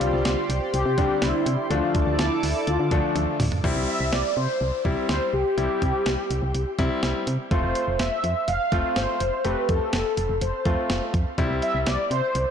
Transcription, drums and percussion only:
0.01 closed hi-hat medium
0.25 snare loud
0.25 closed hi-hat medium
0.50 closed hi-hat medium
0.74 closed hi-hat medium
0.98 kick medium
0.98 closed hi-hat medium
1.22 snare loud
1.22 closed hi-hat medium
1.46 closed hi-hat medium
1.71 closed hi-hat medium
1.95 kick medium
1.95 closed hi-hat medium
2.19 snare loud
2.19 closed hi-hat medium
2.43 open hi-hat medium
2.67 closed hi-hat medium
2.91 kick medium
2.91 closed hi-hat medium
3.16 closed hi-hat medium
3.16 high tom medium
3.40 mid tom loud
3.40 open hi-hat medium
3.52 floor tom medium
3.64 kick loud
4.13 snare loud
4.85 kick medium
5.09 snare loud
5.58 closed hi-hat medium
5.82 kick medium
5.82 closed hi-hat medium
6.06 snare loud
6.06 closed hi-hat medium
6.31 closed hi-hat medium
6.55 closed hi-hat medium
6.79 kick medium
6.79 closed hi-hat medium
7.03 snare loud
7.03 closed hi-hat medium
7.27 closed hi-hat medium
7.51 kick loud
7.51 closed hi-hat medium
7.75 closed hi-hat medium
7.99 snare loud
7.99 closed hi-hat medium
8.24 closed hi-hat medium
8.48 closed hi-hat medium
8.72 kick medium
8.72 closed hi-hat medium
8.96 snare loud
8.96 closed hi-hat medium
9.20 closed hi-hat medium
9.45 closed hi-hat medium
9.69 kick medium
9.69 closed hi-hat medium
9.93 snare loud
9.93 closed hi-hat medium
10.17 closed hi-hat medium
10.41 closed hi-hat medium
10.65 kick medium
10.65 closed hi-hat medium
10.90 snare loud
10.90 closed hi-hat medium
11.14 kick medium
11.14 closed hi-hat medium
11.38 kick loud
11.38 closed hi-hat medium
11.62 closed hi-hat medium
11.86 snare loud
11.86 closed hi-hat medium
12.11 closed hi-hat medium
12.35 closed hi-hat medium

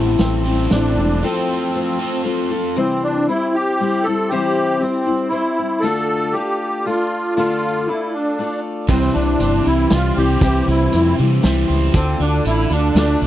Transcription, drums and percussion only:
0.18 snare medium
0.18 closed hi-hat medium
0.70 snare medium
0.70 closed hi-hat medium
8.89 kick loud
8.89 crash loud
9.40 closed hi-hat medium
9.90 snare medium
9.90 closed hi-hat medium
10.41 kick loud
10.41 closed hi-hat medium
10.92 closed hi-hat medium
11.43 snare medium
11.43 closed hi-hat medium
11.94 kick loud
11.94 closed hi-hat medium
12.45 closed hi-hat medium
12.96 snare medium
12.96 closed hi-hat medium

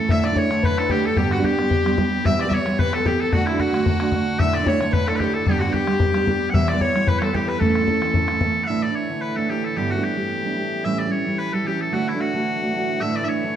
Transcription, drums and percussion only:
0.09 bodhran medium
0.24 bodhran medium
0.36 bodhran medium
0.51 bodhran medium
0.63 bodhran medium
0.78 bodhran medium
0.84 bodhran soft
0.90 bodhran medium
1.16 bodhran medium
1.31 bodhran medium
1.44 bodhran medium
1.59 bodhran medium
1.71 bodhran medium
1.86 bodhran medium
1.92 bodhran soft
1.98 bodhran medium
2.25 bodhran medium
2.40 bodhran medium
2.51 bodhran medium
2.66 bodhran medium
2.79 bodhran medium
2.93 bodhran medium
2.99 bodhran soft
3.06 bodhran medium
3.33 bodhran medium
3.47 bodhran medium
3.60 bodhran medium
3.74 bodhran medium
3.86 bodhran medium
4.00 bodhran medium
4.07 bodhran soft
4.12 bodhran medium
4.39 bodhran medium
4.53 bodhran medium
4.66 bodhran medium
4.81 bodhran medium
4.93 bodhran medium
5.08 bodhran medium
5.15 bodhran soft
5.20 bodhran medium
5.46 bodhran medium
5.61 bodhran medium
5.74 bodhran medium
5.87 bodhran medium
6.00 bodhran medium
6.14 bodhran medium
6.21 bodhran soft
6.27 bodhran medium
6.54 bodhran medium
6.68 bodhran medium
6.81 bodhran medium
6.96 bodhran medium
7.07 bodhran medium
7.22 bodhran medium
7.35 bodhran medium
7.61 bodhran medium
7.75 bodhran medium
7.88 bodhran medium
8.02 bodhran medium
8.14 bodhran medium
8.28 bodhran medium
8.35 bodhran soft
8.41 bodhran medium

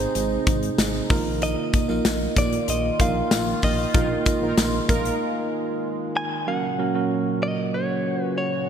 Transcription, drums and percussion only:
0.00 closed hi-hat medium
0.15 closed hi-hat medium
0.15 tambourine soft
0.47 kick loud
0.47 closed hi-hat medium
0.47 tambourine soft
0.63 closed hi-hat soft
0.78 snare loud
0.78 closed hi-hat medium
0.78 tambourine medium
1.10 kick loud
1.10 open hi-hat medium
1.10 tambourine soft
1.42 closed hi-hat medium
1.42 tambourine soft
1.73 kick medium
1.73 closed hi-hat medium
1.73 tambourine medium
1.89 tambourine soft
2.05 snare loud
2.05 closed hi-hat medium
2.05 tambourine medium
2.36 kick medium
2.36 closed hi-hat medium
2.36 tambourine soft
2.53 closed hi-hat medium
2.68 closed hi-hat medium
2.68 tambourine soft
2.99 kick medium
2.99 closed hi-hat medium
2.99 tambourine soft
3.31 snare loud
3.31 closed hi-hat medium
3.31 tambourine medium
3.62 kick medium
3.62 open hi-hat medium
3.62 tambourine soft
3.79 tambourine soft
3.94 kick loud
3.94 closed hi-hat medium
3.94 tambourine soft
4.26 kick medium
4.26 closed hi-hat medium
4.26 tambourine medium
4.57 snare loud
4.57 closed hi-hat medium
4.57 tambourine medium
4.89 kick medium
4.89 closed hi-hat medium
4.89 tambourine soft
5.05 closed hi-hat medium

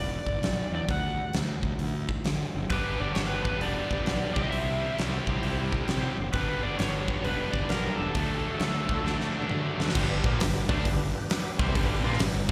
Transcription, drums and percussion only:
0.26 kick medium
0.43 snare loud
0.43 open hi-hat soft
0.89 kick loud
0.89 open hi-hat soft
1.33 snare loud
1.33 open hi-hat soft
1.63 kick medium
1.79 open hi-hat soft
2.09 kick medium
2.24 snare loud
2.24 open hi-hat soft
2.70 kick loud
2.70 open hi-hat soft
3.15 snare loud
3.15 open hi-hat soft
3.45 kick medium
3.61 open hi-hat soft
3.91 kick medium
4.06 snare loud
4.06 open hi-hat soft
4.36 kick loud
4.52 open hi-hat soft
4.99 snare loud
4.99 open hi-hat soft
5.27 kick medium
5.43 open hi-hat soft
5.72 kick medium
5.88 snare medium
5.88 open hi-hat soft
6.33 kick loud
6.33 open hi-hat soft
6.79 snare loud
6.79 open hi-hat soft
7.08 kick medium
7.24 open hi-hat soft
7.54 kick medium
7.69 snare medium
7.69 open hi-hat soft
8.15 kick loud
8.15 open hi-hat soft
8.60 snare loud
8.60 open hi-hat soft
8.89 kick medium
9.06 snare soft
9.21 snare soft
9.42 mid tom medium
9.49 mid tom medium
9.80 snare medium
9.89 snare medium
9.95 kick loud
9.95 crash loud
10.24 kick loud
10.40 snare loud
10.40 open hi-hat medium
10.69 kick loud
10.85 kick medium
10.85 open hi-hat medium
11.30 snare loud
11.30 open hi-hat medium
11.59 kick loud
11.75 kick loud
11.75 open hi-hat medium
12.13 snare soft
12.19 snare loud
12.19 open hi-hat medium

